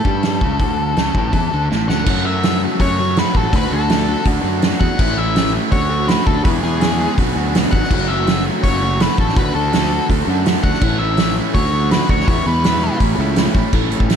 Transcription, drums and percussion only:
0.05 kick medium
0.23 snare loud
0.23 open hi-hat soft
0.41 kick loud
0.60 kick loud
0.60 open hi-hat soft
0.97 snare loud
0.97 open hi-hat soft
1.15 kick loud
1.33 kick medium
1.33 open hi-hat soft
1.72 snare medium
1.89 snare medium
2.06 kick loud
2.06 crash loud
2.43 snare loud
2.43 open hi-hat medium
2.80 kick medium
2.80 open hi-hat medium
3.16 snare loud
3.16 open hi-hat medium
3.35 kick medium
3.53 kick loud
3.53 open hi-hat medium
3.90 snare loud
3.90 open hi-hat medium
4.00 snare soft
4.25 kick medium
4.25 open hi-hat medium
4.62 snare loud
4.62 open hi-hat medium
4.81 kick medium
4.99 kick loud
4.99 crash loud
5.36 snare loud
5.36 open hi-hat medium
5.46 snare soft
5.72 kick medium
5.72 open hi-hat medium
6.08 snare loud
6.08 open hi-hat medium
6.27 kick medium
6.45 kick loud
6.45 open hi-hat medium
6.81 snare loud
6.81 open hi-hat medium
7.18 kick medium
7.18 open hi-hat medium
7.55 snare loud
7.55 open hi-hat medium
7.73 kick medium
7.83 snare soft
7.91 kick loud
7.91 crash loud
8.27 snare loud
8.27 open hi-hat medium
8.37 snare soft
8.64 kick medium
8.64 open hi-hat medium
9.00 snare loud
9.00 open hi-hat medium
9.18 kick medium
9.29 snare soft
9.36 kick loud
9.36 open hi-hat medium
9.73 snare loud
9.73 open hi-hat medium
9.83 snare soft
10.10 kick medium
10.10 open hi-hat medium
10.46 snare loud
10.46 open hi-hat medium
10.64 kick medium
10.74 snare soft
10.81 kick loud
10.81 crash loud
11.17 snare loud
11.17 open hi-hat medium
11.28 snare soft
11.55 kick medium
11.55 open hi-hat medium
11.91 snare loud
11.91 open hi-hat medium
12.09 kick medium
12.20 snare soft
12.28 kick loud
12.28 open hi-hat medium
12.64 snare loud
12.64 open hi-hat medium
12.75 snare soft
13.00 kick medium
13.00 open hi-hat medium
13.36 snare loud
13.36 open hi-hat medium
13.55 kick medium
13.73 kick loud
13.73 crash medium
13.92 closed hi-hat medium
14.00 kick medium
14.10 snare loud
14.10 closed hi-hat medium

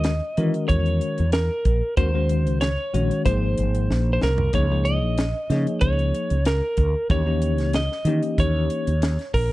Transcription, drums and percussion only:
0.04 snare medium
0.04 closed hi-hat medium
0.37 closed hi-hat medium
0.54 closed hi-hat soft
0.69 kick medium
0.69 closed hi-hat medium
0.86 closed hi-hat soft
1.01 closed hi-hat soft
1.18 closed hi-hat soft
1.32 snare loud
1.32 closed hi-hat medium
1.65 kick medium
1.65 closed hi-hat soft
1.97 kick loud
1.97 closed hi-hat medium
2.29 closed hi-hat medium
2.47 closed hi-hat soft
2.61 snare medium
2.61 closed hi-hat medium
2.94 closed hi-hat medium
3.11 closed hi-hat soft
3.26 kick medium
3.26 closed hi-hat medium
3.58 closed hi-hat medium
3.75 closed hi-hat soft
3.91 snare medium
4.21 snare medium
4.38 floor tom medium
4.53 kick medium
4.53 closed hi-hat medium
4.85 closed hi-hat medium
5.18 snare loud
5.18 closed hi-hat medium
5.50 snare soft
5.50 closed hi-hat medium
5.67 closed hi-hat soft
5.81 kick medium
5.81 closed hi-hat medium
5.99 closed hi-hat soft
6.15 closed hi-hat soft
6.30 closed hi-hat soft
6.45 snare loud
6.45 closed hi-hat medium
6.77 kick medium
6.77 closed hi-hat medium
7.10 kick loud
7.10 closed hi-hat medium
7.42 closed hi-hat medium
7.58 snare soft
7.58 closed hi-hat soft
7.73 snare medium
7.73 closed hi-hat medium
7.92 snare soft
8.05 closed hi-hat medium
8.23 closed hi-hat soft
8.38 kick medium
8.38 closed hi-hat medium
8.70 closed hi-hat medium
8.87 closed hi-hat soft
9.02 snare medium
9.02 closed hi-hat medium
9.19 snare soft
9.19 closed hi-hat soft
9.34 kick medium
9.34 open hi-hat medium

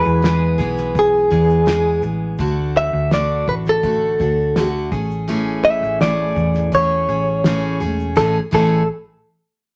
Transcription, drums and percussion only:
0.24 snare loud
0.24 shaker medium
0.59 kick medium
0.59 shaker medium
0.77 snare soft
0.77 shaker medium
0.95 kick loud
0.95 shaker medium
1.32 kick medium
1.32 shaker medium
1.50 shaker soft
1.67 snare loud
1.67 shaker medium
2.02 shaker medium
2.38 kick loud
2.38 shaker medium
2.76 shaker soft
3.11 snare loud
3.11 shaker medium
3.48 kick medium
3.48 shaker soft
3.66 snare soft
3.66 shaker soft
3.83 kick loud
3.83 shaker medium
4.19 kick medium
4.19 shaker medium
4.56 snare loud
4.56 shaker medium
4.92 kick loud
4.92 shaker medium
5.11 shaker soft
5.28 shaker medium
5.65 shaker soft
5.83 shaker soft
6.00 snare loud
6.00 shaker medium
6.36 kick medium
6.36 shaker medium
6.54 snare soft
6.54 shaker soft
6.72 kick loud
6.72 shaker medium
7.09 shaker soft
7.44 snare loud
7.44 shaker medium
7.81 shaker soft
7.99 shaker soft
8.17 kick medium
8.17 snare medium
8.53 kick loud
8.53 crash medium

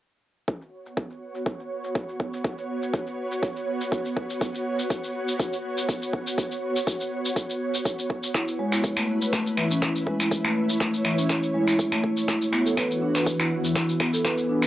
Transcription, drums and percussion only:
0.48 kick loud
0.61 shaker soft
0.86 shaker medium
0.97 kick loud
0.97 shaker medium
1.10 shaker soft
1.35 shaker medium
1.46 kick loud
1.46 shaker medium
1.60 shaker soft
1.84 shaker medium
1.95 kick loud
1.95 shaker medium
2.09 shaker soft
2.20 kick medium
2.33 shaker medium
2.44 kick loud
2.44 shaker medium
2.58 shaker soft
2.83 shaker medium
2.94 kick loud
2.94 shaker medium
3.07 shaker soft
3.32 shaker medium
3.43 kick loud
3.43 shaker medium
3.56 shaker soft
3.81 shaker medium
3.92 kick loud
3.92 shaker medium
4.05 shaker soft
4.17 kick medium
4.30 shaker medium
4.41 kick loud
4.41 shaker medium
4.55 shaker soft
4.79 shaker medium
4.90 kick loud
4.90 shaker medium
5.04 shaker soft
5.28 shaker medium
5.40 kick loud
5.40 shaker medium
5.53 shaker soft
5.78 shaker medium
5.89 kick loud
5.89 shaker medium
6.02 shaker soft
6.13 kick medium
6.27 shaker medium
6.38 kick loud
6.38 shaker medium
6.52 shaker soft
6.76 shaker medium
6.87 kick loud
6.87 shaker medium
7.01 shaker soft
7.25 shaker medium
7.36 kick loud
7.36 shaker medium
7.50 shaker soft
7.74 shaker medium
7.85 kick loud
7.85 shaker medium
7.99 shaker soft
8.10 kick medium
8.23 shaker medium
8.35 finger snap medium
8.35 kick loud
8.35 shaker medium
8.48 shaker soft
8.72 finger snap medium
8.72 shaker medium
8.84 kick loud
8.84 shaker medium
8.97 finger snap medium
8.97 shaker soft
9.22 shaker medium
9.33 finger snap medium
9.33 kick loud
9.33 shaker medium
9.47 shaker soft
9.57 finger snap medium
9.71 shaker medium
9.82 finger snap medium
9.82 kick loud
9.82 shaker medium
9.96 shaker soft
10.07 kick medium
10.20 finger snap medium
10.20 shaker medium
10.31 kick loud
10.31 shaker medium
10.45 finger snap medium
10.45 shaker soft
10.69 shaker medium
10.80 finger snap medium
10.80 kick loud
10.80 shaker medium
10.94 shaker soft
11.05 finger snap medium
11.18 shaker medium
11.29 finger snap medium
11.29 kick loud
11.29 shaker medium
11.43 shaker soft
11.67 finger snap medium
11.67 shaker medium
11.79 kick loud
11.79 shaker medium
11.92 finger snap medium
11.92 shaker soft
12.03 kick medium
12.17 shaker medium
12.28 finger snap medium
12.28 kick loud
12.28 shaker medium
12.42 shaker soft
12.53 finger snap medium
12.66 shaker medium
12.77 finger snap medium
12.77 kick loud
12.77 shaker medium
12.91 shaker soft
13.15 finger snap medium
13.15 shaker medium
13.26 kick loud
13.26 shaker medium
13.40 finger snap medium
13.40 shaker soft
13.64 shaker medium
13.75 finger snap medium
13.75 kick loud
13.75 shaker medium
13.89 shaker soft
14.00 finger snap medium
14.00 kick medium
14.14 shaker medium
14.25 finger snap medium
14.25 kick loud
14.25 shaker medium
14.38 shaker soft
14.62 finger snap medium
14.62 shaker medium

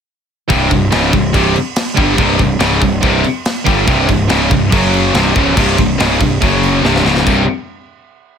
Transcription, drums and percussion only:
0.50 kick loud
0.50 crash medium
0.71 kick medium
0.71 crash medium
0.92 snare loud
0.92 crash medium
1.13 kick medium
1.13 crash medium
1.34 kick loud
1.34 crash medium
1.56 crash medium
1.76 snare loud
1.76 crash medium
1.97 kick loud
1.97 crash medium
2.18 kick loud
2.18 crash medium
2.39 kick medium
2.39 crash medium
2.60 snare loud
2.60 crash medium
2.81 kick loud
2.81 crash medium
3.03 kick loud
3.03 crash medium
3.24 crash medium
3.45 snare medium
3.45 crash medium
3.67 kick loud
3.67 crash medium
3.87 kick loud
3.87 crash medium
4.09 kick medium
4.09 crash medium
4.29 snare loud
4.29 crash medium
4.51 kick loud
4.51 crash medium
4.72 kick loud
4.72 crash medium
4.94 crash medium
5.14 snare loud
5.14 crash medium
5.36 kick loud
5.36 crash medium
5.57 kick loud
5.57 crash loud
5.78 kick medium
5.78 crash medium
6.00 snare loud
6.00 crash medium
6.21 kick loud
6.21 crash medium
6.42 kick loud
6.42 crash medium
6.63 crash medium
6.85 snare medium
6.96 snare medium
7.06 snare medium
7.17 snare medium
7.27 kick loud
7.27 crash medium

